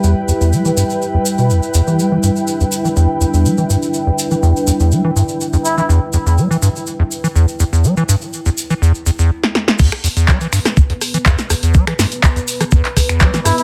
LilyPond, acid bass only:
\new Staff \with { instrumentName = "Acid bass" } { \clef bass \time 4/4 \key e \minor \tempo 4 = 123 e,16 r16 e,16 e,16 g16 e16 g,16 r8 e,16 r16 b,16 e,16 r16 e,16 e16 | g16 e16 g,16 r8 e,16 r16 e16 e,16 r16 e,16 e,16 g16 e16 g,16 r16 | r16 e,16 r16 e16 e,16 r16 e,16 e,16 g16 e16 g,16 r8 e,16 r16 e16 | e,16 r16 e,16 e,16 g16 e16 g,16 r8 e,16 r16 e16 e,16 r16 e,16 e,16 |
g16 e16 g,16 r8 e,16 r16 e16 e,16 r16 e,16 e,16 r4 | e,16 r16 e,16 e,16 g16 e16 g,16 r8 e,16 r16 e16 e,16 r16 e,16 e,16 | g16 e16 g,16 r8 e,16 r16 e16 e,16 r16 e,16 e,16 g16 e16 g,16 r16 | }